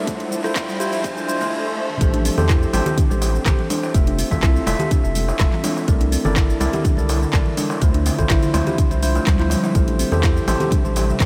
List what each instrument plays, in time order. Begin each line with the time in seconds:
Already playing: ambient pad E5, riser
0.07 ambient pad F3 D4 C5, kalimba A3, tine electric piano E4 F4 C5, kick, closed hi-hat, high conga, cabasa
0.20 closed hi-hat
0.31 high conga, cabasa
0.44 tine electric piano E4 F4 C5, kalimba A4, cross-stick, clap, high conga, cabasa
0.56 kick, cross-stick, clap, closed hi-hat, cabasa
0.69 kalimba G3, cabasa
0.80 tine electric piano E4 F4 C5, kalimba G4, cabasa
0.93 closed hi-hat, cabasa
1.04 kick, closed hi-hat, swell, cabasa
1.17 kalimba D4, tine electric piano E4 F4 C5, cabasa
1.28 kalimba D4, tine electric piano E4 F4 C5, high conga, cabasa
1.41 kalimba A3, low conga, cabasa
1.77 high tom
1.90 mid tom
2.01 analog synth bass A1, kalimba A3, ambient pad C4 G4, tine electric piano G4 A4 C5, kick, closed hi-hat, cabasa
2.14 kalimba D4, closed hi-hat
2.25 kalimba C4, open hi-hat, cabasa
2.38 analog synth bass E2, tine electric piano G4 A4 C5, kalimba A4, darbuka tek, low conga, cabasa
2.49 kalimba E4, kick, cross-stick, clap, closed hi-hat, cabasa
2.63 cabasa
2.73 analog synth bass A1, kalimba C4, tine electric piano G4 A4 C5, open hi-hat, darbuka ka, high conga, darbuka tek, cabasa
2.86 kalimba G4, closed hi-hat, low conga, cabasa
2.98 kalimba D4, kick, closed hi-hat, high conga, low conga, cabasa
3.10 analog synth bass A1, tine electric piano G4 A4 C5, high conga, cabasa
3.22 open hi-hat, darbuka tek, cabasa
3.35 cabasa
3.45 analog synth bass A1, tine electric piano G4 A4 C5, kick, cross-stick, clap, closed hi-hat, low conga, cabasa
3.59 kalimba E3
3.70 kalimba D4, open hi-hat, darbuka ka, high conga, cabasa
3.83 darbuka tek, cabasa
3.94 analog synth bass F1, kalimba A3, tine electric piano F4 A4 E5, kick, closed hi-hat, cabasa
4.07 kalimba D4, closed hi-hat
4.19 kalimba C4, open hi-hat, cabasa
4.31 analog synth bass C2, tine electric piano F4 A4 E5, kalimba A4, kick, darbuka tek, low conga, cabasa
4.43 kalimba E4, kick, cross-stick, clap, closed hi-hat, cabasa
4.56 cabasa
4.66 analog synth bass F1, kalimba C4, tine electric piano F4 A4 E5, open hi-hat, darbuka ka, high conga, darbuka tek, cabasa
4.79 kalimba G4, closed hi-hat, low conga, cabasa
4.91 kalimba D4, kick, closed hi-hat, cabasa
5.04 analog synth bass F1, tine electric piano F4 A4 E5, cabasa
5.15 open hi-hat, high conga, cabasa
5.29 darbuka ka, cabasa
5.39 analog synth bass F1, tine electric piano F4 A4 E5, kick, cross-stick, clap, closed hi-hat, high conga, cabasa
5.52 kalimba E3, clap
5.64 kalimba D4, open hi-hat, high conga, darbuka tek, cabasa
5.77 darbuka ka, cabasa
5.88 analog synth bass C2, ambient pad D3 E5, kalimba A3, tine electric piano E4 A4 A#4 D5, kick, closed hi-hat, cabasa
6.01 kalimba D4, closed hi-hat
6.12 kalimba C4, open hi-hat, cabasa
6.25 analog synth bass G1, tine electric piano E4 A4 A#4 D5, kalimba A4, darbuka tek, low conga, cabasa
6.36 kalimba E4, kick, cross-stick, clap, closed hi-hat, cabasa
6.50 cabasa
6.60 analog synth bass C2, kalimba C4, tine electric piano E4 A4 A#4 D5, open hi-hat, darbuka ka, high conga, darbuka tek, cabasa
6.73 kalimba G4, closed hi-hat, low conga, cabasa
6.84 kalimba D4, kick, closed hi-hat, high conga, low conga, cabasa
6.97 analog synth bass C2, tine electric piano E4 A4 A#4 D5, high conga, cabasa
7.09 open hi-hat, darbuka tek, cabasa
7.23 cabasa
7.33 analog synth bass C2, tine electric piano E4 A4 A#4 D5, kick, cross-stick, clap, closed hi-hat, low conga, cabasa
7.46 kalimba E3
7.57 kalimba D4, open hi-hat, darbuka ka, high conga, cabasa
7.70 darbuka tek, cabasa
7.81 analog synth bass D2, ambient pad F3 C4, kalimba A3, tine electric piano E4 F4 C5, kick, closed hi-hat, cabasa
7.94 kalimba D4, closed hi-hat
8.06 kalimba C4, open hi-hat, darbuka ka, cabasa
8.19 analog synth bass A1, tine electric piano E4 F4 C5, kalimba A4, kick, closed hi-hat, darbuka tek, low conga, cabasa
8.30 kalimba E4, kick, cross-stick, clap, closed hi-hat, cabasa
8.43 closed hi-hat, cabasa
8.54 analog synth bass D2, kalimba C4, tine electric piano E4 F4 C5, open hi-hat, darbuka ka, darbuka tek, high conga, cabasa
8.67 kalimba G4, closed hi-hat, low conga, cabasa
8.78 kalimba D4, kick, closed hi-hat, cabasa
8.91 analog synth bass C2, tine electric piano E4 F4 C5, closed hi-hat, cabasa
9.03 kalimba D4, tine electric piano E4 F4 C5, open hi-hat, high conga, cabasa
9.15 kalimba A3, darbuka ka, cabasa
9.27 analog synth bass D2, kalimba G3, kick, cross-stick, clap, closed hi-hat, high conga, cabasa
9.39 kalimba E4, tine electric piano E4 F4 C5, clap
9.50 kalimba G3, open hi-hat, darbuka tek, high conga, cabasa
9.64 kalimba E4, darbuka ka, cabasa
9.75 analog synth bass A1, ambient pad C3 G3, kalimba A3, tine electric piano G4 A4 C5, kick, closed hi-hat, cabasa
9.88 kalimba D4, closed hi-hat
9.99 kalimba C4, open hi-hat, cabasa
10.12 analog synth bass E2, tine electric piano G4 A4 C5, kalimba A4, darbuka tek, low conga, cabasa
10.23 kalimba E4, kick, cross-stick, clap, closed hi-hat, cabasa
10.37 cabasa
10.48 analog synth bass A1, kalimba C4, tine electric piano G4 A4 C5, open hi-hat, darbuka ka, high conga, darbuka tek, cabasa
10.60 kalimba G4, closed hi-hat, low conga, cabasa
10.71 kalimba D4, kick, closed hi-hat, high conga, low conga, cabasa
10.85 analog synth bass A1, tine electric piano G4 A4 C5, high conga, cabasa
10.96 open hi-hat, darbuka tek, cabasa
11.09 cabasa
11.20 analog synth bass A1, tine electric piano G4 A4 C5, kick, cross-stick, clap, closed hi-hat, low conga, cabasa